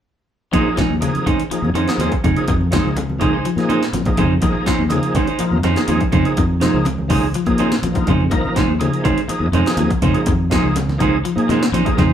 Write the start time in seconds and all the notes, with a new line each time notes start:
0.52 A#1 D#3 F3 A#3 C#4 D#4 G#4 C5, kick, closed hi-hat
0.77 F3 C#4 D#4 G#4, muted fingered electric bass stroke, muted clean electric guitar stroke, kick, snare, closed hi-hat, low conga
0.90 D#2
1.00 C#3 F3 A#3 D#4 G#4, closed hi-hat, high conga
1.15 closed hi-hat, high conga
1.26 D#3 C#4 D#4 G#4 C5, kick, closed hi-hat, high conga, low conga
1.40 closed hi-hat
1.50 F3 A#3 D#4 G#4, muted fingered electric bass stroke, closed hi-hat
1.62 F2, high conga
1.74 F2 D#3 C#4 D#4 G#4 C5, closed hi-hat, high conga
1.87 F3 A#3 D#4 G#4, snare, closed hi-hat
1.98 D#2 C#4 G#4 C5, snare, closed hi-hat, high conga
2.12 kick, closed hi-hat
2.24 F2 C#3 C#4 D#4 G#4, muted clean electric guitar stroke, kick, closed hi-hat, low conga
2.36 F3 A#3 D#4 G#4, closed hi-hat
2.48 F2 D#3, kick, closed hi-hat
2.61 high conga
2.71 F3 A#3 C#4 D#4 G#4 C5, muted clean electric guitar stroke, kick, snare, closed hi-hat, low conga
2.84 C#2
2.96 C#3, closed hi-hat, high conga
3.10 high conga
3.19 D#3 F3 A#3 C#4 D#4 G#4 C5, kick, closed hi-hat, high conga, low conga
3.33 D#4 G#4 C5
3.45 F3, closed hi-hat
3.56 A#2 F3 A#3 D#4 G#4, snare, closed hi-hat
3.69 D#4 G#4 C5, closed hi-hat, high conga
3.83 snare
3.93 A#1 F3, snare, closed hi-hat, high conga
4.05 A#1 F3 A#3 D#4 G#4, kick, closed hi-hat
4.17 F2 C#3 C#4 D#4 G#4 C5, kick, closed hi-hat, low conga
4.40 A#1 D#3 F3 A#3 D#4 G#4, kick, closed hi-hat
4.66 F3 C#4 D#4 G#4 C5, muted fingered electric bass stroke, kick, snare, closed hi-hat
4.79 D#2
4.89 C#3 F3 A#3 D#4 G#4, closed hi-hat, high conga
5.03 closed hi-hat
5.15 D#3 C#4 D#4 G#4 C5, kick, closed hi-hat, high conga, low conga
5.27 D#4 G#4 C5, closed hi-hat
5.38 F3 A#3 D#4 F4, muted fingered electric bass stroke, closed hi-hat
5.51 F2, high conga
5.63 F2 D#3 C#4 D#4 G#4 C5, snare, closed hi-hat, high conga
5.74 F3 A#3 D#4 G#4, snare, closed hi-hat
5.88 D#2 F3 C#4 D#4 G#4 C5, closed hi-hat, high conga
6.01 kick, closed hi-hat
6.12 F2 C#3 C#4 D#4 G#4 C5, kick, closed hi-hat, low conga
6.25 F3 A#3 D#4 G#4, closed hi-hat
6.37 F2 D#3, kick, closed hi-hat
6.60 F3 A#3 C#4 D#4 G#4 C5, snare, closed hi-hat, low conga
6.74 C#2
6.85 C#3, closed hi-hat, high conga
6.98 high conga
7.08 D#3 F3 A#3 C#4 D#4 G#4 C5, kick, open hi-hat, high conga, low conga
7.34 F3, closed hi-hat
7.46 A#2 F3 A#3 D#4 G#4, kick, closed hi-hat
7.58 D#3 C#4 D#4 G#4 C5, closed hi-hat, high conga
7.72 snare
7.82 A#1 F3, closed hi-hat, high conga
7.92 A#1 F3 A#3 D#4 F4, kick, closed hi-hat
8.07 F2 C#3 C#4 D#4 G#4 C5, kick, closed hi-hat, low conga
8.20 high conga
8.30 A#1 D#3 F3 A#3 D#4 A#4, kick, closed hi-hat
8.46 high conga
8.56 F3 C#4 D#4 G#4 C5, muted fingered electric bass stroke, kick, snare, closed hi-hat, low conga
8.68 D#2
8.79 C#3 F3 A#3 D#4 G#4, closed hi-hat, high conga
8.93 closed hi-hat
9.04 D#3 C#4 D#4 G#4 C5, kick, closed hi-hat, high conga, low conga
9.18 closed hi-hat
9.28 F3 A#3 D#4 G#4, muted fingered electric bass stroke, muted clean electric guitar stroke, closed hi-hat
9.40 F2
9.52 F2 D#3 C#4 D#4 G#4 C5, closed hi-hat, high conga, low conga
9.65 F3 A#3 D#4 G#4, snare, closed hi-hat
9.77 D#2 F3, closed hi-hat, high conga
9.90 kick, closed hi-hat
10.02 F2 C#3 C#4 D#4 G#4 C5, kick, closed hi-hat, low conga
10.13 F3 A#3 D#4 G#4, muted fingered electric bass stroke, closed hi-hat
10.26 F2 D#3, kick, closed hi-hat
10.50 F3 A#3 C#4 D#4 G#4 C5, kick, snare, closed hi-hat
10.62 C#2
10.76 C#3, snare, closed hi-hat, high conga
10.89 snare, high conga
10.98 D#3 F3 A#3 C#4 D#4 G#4, kick, closed hi-hat, high conga, low conga
11.02 C5
11.25 F3, closed hi-hat
11.36 A#2 F3 A#3 D#4 G#4, closed hi-hat
11.49 D#3 C#4 D#4 G#4 C5, snare, closed hi-hat, high conga, low conga
11.63 snare
11.72 A#1 F3 C#4 D#4 G#4 C5, closed hi-hat, high conga
11.85 A#1 F3 A#3 D#4 G#4, kick, closed hi-hat
11.98 F2 C#3 D#4 G#4 C5, muted clean electric guitar stroke, kick, snare, closed hi-hat, low conga
12.10 high conga